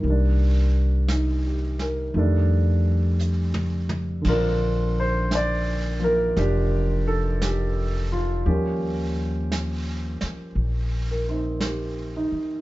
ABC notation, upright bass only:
X:1
M:4/4
L:1/8
Q:"Swing" 1/4=57
K:Bb
V:1 name="Upright bass" clef=bass
C,,4 F,,4 | B,,,4 F,,,4 | E,,3 z B,,,3 z |]